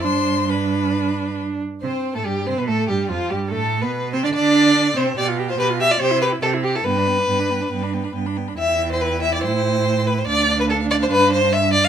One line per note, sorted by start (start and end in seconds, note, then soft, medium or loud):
0.03 1.62 G2 medium
0.03 0.49 D4 medium
0.03 0.51 C5 medium
0.03 0.51 C6 medium
0.49 1.60 D4 medium
0.49 1.39 B4 medium
0.49 1.39 B5 medium
1.82 1.91 C3 medium
1.82 2.16 C4 medium
1.82 2.12 C5 medium
2.15 2.25 A2 medium
2.15 2.27 A3 medium
2.15 2.19 A4 soft
2.15 2.27 A4 medium
2.25 2.50 G2 soft
2.25 2.46 G3 soft
2.25 2.46 G4 soft
2.25 2.48 G4 medium
2.47 2.58 C3 medium
2.47 2.59 C4 medium
2.47 2.56 C5 medium
2.47 2.60 C5 medium
2.57 2.70 B2 medium
2.57 2.69 B3 medium
2.57 2.61 B4 soft
2.57 2.67 B4 medium
2.68 2.89 A2 medium
2.68 2.90 A3 medium
2.68 2.88 A4 medium
2.88 3.10 G2 medium
2.88 3.11 G3 medium
2.88 3.10 G4 medium
2.88 3.09 G4 medium
3.09 3.18 F2 medium
3.09 3.32 F3 medium
3.09 3.29 F4 medium
3.09 3.32 F4 medium
3.30 3.53 G2 medium
3.30 3.53 G3 medium
3.30 3.38 G4 medium
3.30 3.50 G4 medium
3.50 3.84 A2 medium
3.50 3.81 A3 medium
3.50 3.83 A4 medium
3.50 3.82 A4 medium
3.82 4.15 B2 medium
3.82 3.90 B3 medium
3.82 4.12 B4 medium
3.82 3.90 B4 medium
4.13 4.24 C3 medium
4.13 4.25 C4 medium
4.13 4.24 C5 medium
4.13 4.25 C5 medium
4.23 4.29 D3 medium
4.23 4.33 D4 medium
4.23 4.33 D5 medium
4.23 4.29 D5 medium
4.34 4.96 D3 medium
4.34 4.96 D4 medium
4.34 4.98 D5 medium
4.34 4.98 D5 loud
4.97 5.17 C3 medium
4.97 5.17 C4 medium
4.97 5.16 C5 medium
4.97 5.17 C5 medium
5.17 5.54 B2 medium
5.17 5.30 G4 medium
5.17 5.26 D5 loud
5.17 5.29 G5 medium
5.28 5.40 F4 medium
5.28 5.39 F5 medium
5.37 5.51 G4 medium
5.37 5.50 G5 medium
5.48 5.58 F4 medium
5.48 5.59 C5 medium
5.48 5.57 F5 medium
5.57 5.95 B2 medium
5.57 5.71 G4 medium
5.57 5.67 B4 loud
5.57 5.70 G5 medium
5.69 5.81 F4 medium
5.69 5.81 F5 medium
5.79 5.92 G4 medium
5.79 5.93 E5 loud
5.79 5.92 G5 medium
5.90 6.00 F4 medium
5.90 6.02 D5 medium
5.90 5.99 F5 medium
6.00 6.38 C3 medium
6.00 6.12 G4 medium
6.00 6.21 C5 loud
6.00 6.13 G5 medium
6.10 6.23 E4 medium
6.10 6.23 E5 medium
6.22 6.33 G4 medium
6.22 6.30 B4 medium
6.22 6.34 G5 medium
6.32 6.42 E4 medium
6.32 6.43 E5 medium
6.42 6.81 C3 medium
6.42 6.55 G4 medium
6.42 6.50 A4 medium
6.42 6.55 G5 medium
6.53 6.65 E4 soft
6.53 6.65 E5 medium
6.64 6.76 G4 medium
6.64 6.77 G4 medium
6.64 6.77 G5 medium
6.75 6.85 E4 medium
6.75 6.86 A4 medium
6.75 6.86 E5 medium
6.84 7.24 G2 medium
6.84 6.98 B3 medium
6.84 8.14 B4 medium
6.84 6.99 G5 medium
6.96 7.09 D4 soft
6.96 7.10 B5 soft
7.07 7.20 B3 soft
7.07 7.20 G5 soft
7.18 7.28 D4 soft
7.18 7.29 B5 soft
7.28 7.67 G2 medium
7.28 7.41 B3 soft
7.28 7.42 G5 soft
7.40 7.52 D4 soft
7.40 7.52 B5 soft
7.50 7.63 B3 soft
7.50 7.62 G5 soft
7.61 7.71 D4 soft
7.61 7.71 B5 soft
7.72 8.10 G2 medium
7.72 7.84 B3 soft
7.72 7.84 G5 medium
7.83 7.95 D4 soft
7.83 7.95 B5 soft
7.93 8.06 B3 soft
7.93 8.06 G5 soft
8.04 8.15 D4 soft
8.04 8.14 B5 soft
8.15 8.54 G2 medium
8.15 8.28 B3 soft
8.15 8.28 G5 soft
8.26 8.39 D4 soft
8.26 8.38 B5 soft
8.37 8.50 B3 soft
8.37 8.49 G5 soft
8.48 8.59 D4 soft
8.48 8.58 B5 soft
8.58 9.46 E2 medium
8.58 10.24 E4 medium
8.58 8.89 E5 medium
8.58 10.24 G5 medium
8.92 9.03 C5 medium
9.01 9.21 B4 medium
9.22 9.33 E5 medium
9.34 9.43 D5 medium
9.43 10.28 A2 medium
9.43 10.08 C5 medium
10.07 10.20 B4 medium
10.19 10.27 C5 medium
10.27 11.10 D2 medium
10.27 11.88 D4 medium
10.27 10.59 D5 loud
10.27 11.88 F5 medium
10.61 10.65 B4 medium
10.70 10.78 A4 medium
10.91 10.95 D5 loud
11.03 11.07 C5 medium
11.12 11.88 G2 medium
11.12 11.32 B4 loud
11.32 11.55 C5 loud
11.53 11.73 E5 loud
11.73 11.86 D5 loud
11.84 11.88 F5 loud